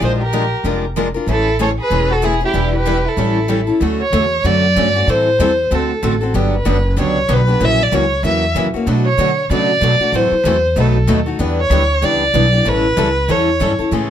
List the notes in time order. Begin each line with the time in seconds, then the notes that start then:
0.00 A#1 F3 G#3 D4 F4 A#4 C5
0.19 G4 A#4
0.33 F3 G#3 D4 F4 A#4
0.63 F1 F3 G#3 D4 F4 A#4
0.96 F3 G#3 D4 F4 A#4
1.14 D4 F4 A#4
1.26 A1 C#3 E3 G#3 A3 C#4 E4 G#4 A4
1.31 A4
1.59 C#3 E3 G#3 A3 C#4 E4 G#4 A4 C#5
1.79 G#4 B4
1.90 E1 C#3 E3 G#3 A3 C#4 E4 G#4 A4
2.10 F#4 A4
2.22 C#3 E3 G#3 A3 C#4 E4 G#4 A4
2.41 A3 C#4 E4 G#4
2.45 G4
2.53 E1 E3 G3 D4 E4 B4
2.75 G4 B4
2.86 E3 G3 D4 E4 B4
3.05 E4 A4
3.17 A1 E3 G3 C#4 E4 A4
3.48 E3 G3 C#4 E4 A4
3.67 C#4 E4 A4
3.80 D2 D3 F#3 A3 C#4 F#4 A4
4.02 C#5
4.12 E2 D3 F#3 A3 C#4 F#4 A4
4.44 F#2 D3 F#3 A3 C#4 F#4 A4 D5
4.76 G2 D3 F#3 A3 C#4 F#4 A4
4.95 A3 C#4 F#4
5.07 A2 E3 G3 C4 E4 A4 C5
5.39 E2 E3 G3 C4 E4 A4
5.71 D2 D3 A3 C4 F#4 A4
6.02 A1 D3 A3 C4 F#4 A4
6.21 C4 F#4 A4
6.34 G1 D3 F#3 B3 D4 G4
6.55 B4
6.65 F#1 D3 F#3 B3 D4 G4
6.97 C#2 D3 F#3 B3 D4 G4 C#5
7.28 B1 D3 F#3 B3 D4 G4
7.33 B4
7.47 B3 D4 G4
7.60 A#1 C#3 E3 F#3 A#3 C#4 E4 F#4 A#4
7.65 E5
7.83 D5
7.91 C#2 C#3 E3 F#3 A#3 C#4 E4 F#4 A#4 C#5
8.23 E2 C#3 E3 F#3 A#3 C#4 E4 F#4 A#4 E5
8.55 C#3 E3 F#3 A#3 C#4 E4 F#4 A#4
8.73 A#3 C#4 F#4, muted upright bass stroke
8.86 B2 F#3 A3 D4 F#4 B4
9.06 C#5
9.18 B2 D3 F#3 A3 D4 F#4 B4
9.50 B2 C#3 F#3 A3 D4 F#4 B4 D5
9.81 B2 F#3 A3 D4 F#4 B4
9.99 A3 D4 F#4, muted upright bass stroke
10.12 A2 C3 E3 F#3 A3 C4 E4 F#4 A4 C5
10.31 muted upright bass stroke
10.44 E2 C3 E3 F#3 A3 C4 E4 F#4 A4
10.76 B1 B2 F#3 A3 D#4 F#4 A4 B4
11.07 D#2 B2 F#3 A3 D#4 F#4 B4
11.26 A3 D#4 F#4
11.39 E2 E3 G3 B3 D4 E4 G4 B4
11.61 C#5
11.70 D2 E3 G3 B3 D4 E4 G4 B4
12.02 C#2 E3 G3 B3 D4 E4 G4 B4 D5
12.33 B1 E3 G3 B3 D4 E4 G4 B4
12.52 B3 D4 G4
12.65 A1 E3 G3 C#4 E4 A4 B4
12.97 C#2 E3 G3 C#4 E4 A4
13.28 E2 E3 G3 C#4 E4 A4 C#5
13.60 G2 E3 G3 C#4 E4 A4
13.78 C#4 E4 A4, muted upright bass stroke
13.91 A2 C#3 E3 G#3 A3 C#4 E4 G#4 A4